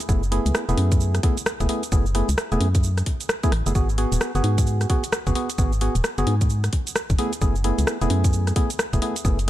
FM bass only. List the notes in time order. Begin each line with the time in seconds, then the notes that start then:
0.09 F#1
0.46 C#2
0.69 E1
0.77 F#2
1.60 E1
1.92 F#1
2.29 C#2
2.52 E1
2.61 F#2
3.52 A1
3.66 F#1
3.75 G#1
4.12 D#1
4.35 F#1
4.44 G#2
5.27 F#1
5.58 G#1
5.95 D#1
6.18 F#1
6.27 G#2
7.10 F#1
7.42 F#1
7.79 C#2
8.02 E1
8.10 F#2
8.93 E1
9.25 F#1